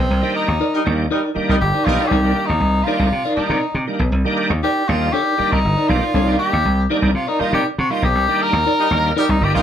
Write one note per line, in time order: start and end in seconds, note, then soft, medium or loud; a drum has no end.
0.00 0.35 C4 medium
0.10 0.20 C2 loud
0.22 0.48 D#3 medium
0.22 0.48 G3 medium
0.22 0.48 A#3 medium
0.22 0.48 D4 medium
0.36 0.82 D#4 medium
0.48 0.58 D#2 medium
0.60 0.78 D#4 medium
0.60 0.78 A#4 medium
0.60 0.79 D5 medium
0.73 0.81 G3 medium
0.73 0.81 D#4 medium
0.73 0.81 A#4 medium
0.84 1.06 D#2 loud
0.84 1.05 D#3 medium
0.84 1.06 G3 medium
0.84 1.06 A#3 medium
0.84 1.06 D4 medium
1.11 1.19 G3 medium
1.11 1.29 D#4 medium
1.11 1.19 D#4 medium
1.11 1.29 A#4 medium
1.11 1.19 A#4 medium
1.11 1.29 D5 medium
1.35 1.56 D#3 medium
1.35 1.56 G3 medium
1.35 1.57 A#3 medium
1.35 1.57 D4 loud
1.35 muted slap bass stroke soft
1.49 1.59 C2 medium
1.49 1.58 G3 medium
1.49 1.57 D#4 medium
1.49 1.57 A#4 medium
1.61 1.71 G1 medium
1.61 1.87 G4 loud
1.74 1.92 D#4 medium
1.74 1.92 A#4 medium
1.74 1.92 D5 medium
1.86 1.96 B1 medium
1.86 2.02 D#3 medium
1.86 2.02 G3 medium
1.86 2.19 G3 medium
1.86 2.02 A#3 medium
1.86 2.02 D4 medium
1.86 2.19 D#4 medium
1.86 2.10 F4 loud
1.86 2.19 A#4 loud
1.99 2.11 D#4 soft
1.99 2.11 A#4 medium
1.99 2.12 D5 medium
2.08 2.31 C2 loud
2.08 2.30 D#4 medium
2.08 2.48 G4 medium
2.12 2.30 A#4 medium
2.12 2.30 D5 medium
2.23 2.49 D#3 medium
2.23 2.50 G3 medium
2.23 2.50 A#3 medium
2.23 2.50 D4 medium
2.46 2.59 D#2 medium
2.46 2.85 D#4 loud
2.60 2.81 C2 medium
2.83 3.07 D#3 medium
2.83 3.07 G3 medium
2.83 3.08 A#3 medium
2.83 3.05 D#4 medium
2.83 3.35 F4 loud
2.88 3.08 D4 medium
2.88 3.05 A#4 medium
2.88 3.06 D5 medium
2.99 3.10 C2 medium
3.12 3.22 C3 medium
3.25 3.43 D#4 medium
3.25 3.43 A#4 medium
3.25 3.43 D5 loud
3.36 3.58 D#3 medium
3.36 3.58 G3 medium
3.36 3.58 A#3 medium
3.36 3.58 D4 medium
3.36 3.83 D#4 medium
3.36 muted slap bass stroke soft
3.50 3.60 C3 loud
3.50 3.65 D#4 medium
3.50 3.65 A#4 medium
3.50 3.64 D5 medium
3.74 3.85 C3 medium
3.87 4.03 D#3 medium
3.87 4.03 G3 medium
3.87 4.03 A#3 medium
3.87 4.04 D4 medium
3.99 4.10 B1 loud
4.12 4.22 C2 loud
4.25 4.51 D#3 medium
4.25 4.51 G3 medium
4.25 4.51 A#3 medium
4.25 4.52 D4 loud
4.50 4.60 D#2 medium
4.63 4.81 D#4 medium
4.63 4.90 G4 loud
4.63 4.82 A#4 medium
4.63 4.82 D5 medium
4.88 5.09 D#2 loud
4.88 5.09 D#3 medium
4.88 5.09 G3 medium
4.88 5.10 A#3 medium
4.88 5.10 D4 medium
4.88 5.15 F4 medium
5.13 5.33 D#4 medium
5.13 5.54 G4 loud
5.13 5.34 A#4 medium
5.13 5.34 D5 medium
5.38 5.59 D#3 medium
5.38 5.59 G3 medium
5.38 5.60 A#3 medium
5.38 5.60 D4 medium
5.38 muted slap bass stroke medium
5.52 5.62 C2 medium
5.52 5.90 D#4 medium
5.65 5.75 G1 loud
5.77 5.96 D#4 medium
5.77 5.95 A#4 medium
5.77 5.95 D5 medium
5.88 5.99 B1 medium
5.88 6.04 D#3 medium
5.88 6.04 G3 medium
5.88 6.05 A#3 medium
5.88 6.05 D4 medium
5.88 6.39 F4 loud
6.02 6.14 D#4 soft
6.02 6.15 A#4 soft
6.02 6.15 D5 medium
6.14 6.34 C2 loud
6.14 6.35 D#4 medium
6.14 6.35 A#4 medium
6.14 6.35 D5 loud
6.26 6.52 D#3 medium
6.26 6.53 G3 medium
6.26 6.53 A#3 medium
6.26 6.53 D4 medium
6.39 6.86 G4 loud
6.53 6.63 D#2 medium
6.65 6.85 C2 medium
6.90 7.10 D#3 medium
6.90 7.11 G3 medium
6.90 7.11 A#3 medium
6.90 7.11 D4 medium
6.90 7.08 D#4 medium
6.90 7.08 A#4 medium
6.90 7.09 D5 medium
7.02 7.12 C2 medium
7.14 7.25 C3 loud
7.14 7.29 F4 medium
7.27 7.42 D#4 medium
7.27 7.46 D#4 medium
7.27 7.46 A#4 medium
7.27 7.46 D5 medium
7.39 7.60 D#3 medium
7.39 7.61 G3 medium
7.39 7.61 A#3 medium
7.39 7.61 D#4 medium
7.39 7.53 F4 medium
7.39 muted slap bass stroke medium
7.53 7.63 C3 loud
7.53 7.68 D#4 soft
7.53 7.66 G4 medium
7.53 7.68 A#4 medium
7.53 7.67 D5 medium
7.78 7.88 C3 loud
7.78 7.93 F#4 medium
7.90 8.06 D#3 medium
7.90 8.06 G3 medium
7.90 8.06 A#3 medium
7.90 8.07 D#4 medium
7.90 8.04 F4 medium
8.02 8.15 B1 medium
8.02 8.43 G4 loud
8.15 8.26 C2 loud
8.28 8.54 D#3 medium
8.28 8.54 G3 medium
8.28 8.54 A#3 medium
8.28 8.55 D4 medium
8.42 9.14 A#4 loud
8.53 8.63 D#2 medium
8.66 8.84 D#4 medium
8.66 8.84 A#4 medium
8.66 8.85 D5 medium
8.79 8.87 G3 medium
8.79 8.87 D#4 medium
8.79 8.87 A#4 medium
8.91 9.11 D#2 loud
8.91 9.12 D#3 medium
8.91 9.12 G3 medium
8.91 9.12 A#3 medium
8.91 9.13 D4 medium
9.14 9.25 G3 medium
9.14 9.35 D#4 medium
9.14 9.20 A#4 medium
9.14 9.35 A#4 medium
9.14 9.35 D5 medium
9.18 9.26 D#4 medium
9.18 9.32 G4 loud
9.18 9.25 A#4 loud
9.29 9.39 C2 loud
9.29 9.46 D#4 medium
9.41 9.51 G1 loud
9.41 9.62 D#3 medium
9.41 9.62 G3 medium
9.41 9.62 A#3 medium
9.41 9.62 D4 loud
9.41 9.54 G4 medium
9.54 9.62 A#1 medium
9.54 9.62 G3 loud
9.54 9.62 D#4 medium
9.54 9.62 F4 medium
9.54 9.62 A#4 loud